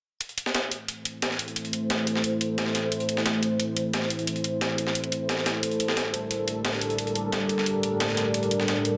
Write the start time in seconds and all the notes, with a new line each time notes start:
0.21 A3 E4 A4 C5, closed hi-hat
0.29 closed hi-hat
0.38 closed hi-hat
0.46 snare
0.55 snare, closed hi-hat
0.71 closed hi-hat
0.88 closed hi-hat
1.05 closed hi-hat
1.22 snare, closed hi-hat
1.31 snare
1.39 closed hi-hat
1.48 closed hi-hat
1.56 closed hi-hat
1.65 closed hi-hat
1.73 closed hi-hat
1.90 snare, closed hi-hat
2.07 closed hi-hat
2.16 snare
2.24 closed hi-hat
2.41 closed hi-hat
2.58 snare, closed hi-hat
2.66 snare
2.75 snare, closed hi-hat
2.92 closed hi-hat
3.00 closed hi-hat
3.09 closed hi-hat
3.17 snare
3.26 snare, closed hi-hat
3.43 closed hi-hat
3.60 closed hi-hat
3.77 closed hi-hat
3.93 snare, closed hi-hat
4.02 snare
4.10 closed hi-hat
4.19 closed hi-hat
4.27 closed hi-hat
4.36 closed hi-hat
4.44 closed hi-hat
4.61 snare, closed hi-hat
4.78 closed hi-hat
4.87 snare
4.95 closed hi-hat
5.04 closed hi-hat
5.12 closed hi-hat
5.29 snare, closed hi-hat
5.38 snare
5.46 snare, closed hi-hat
5.63 A2 G3 D4 A#4, closed hi-hat
5.71 closed hi-hat
5.80 closed hi-hat
5.88 snare
5.97 snare, closed hi-hat
6.14 closed hi-hat
6.31 closed hi-hat
6.48 closed hi-hat
6.65 snare, closed hi-hat
6.73 snare
6.81 closed hi-hat
6.90 closed hi-hat
6.98 closed hi-hat
7.07 closed hi-hat
7.15 closed hi-hat
7.32 snare, closed hi-hat
7.49 closed hi-hat
7.58 snare
7.66 closed hi-hat
7.83 closed hi-hat
8.00 snare, closed hi-hat
8.09 snare
8.17 snare, closed hi-hat
8.34 closed hi-hat
8.43 closed hi-hat
8.51 closed hi-hat
8.60 snare
8.68 snare, closed hi-hat
8.85 closed hi-hat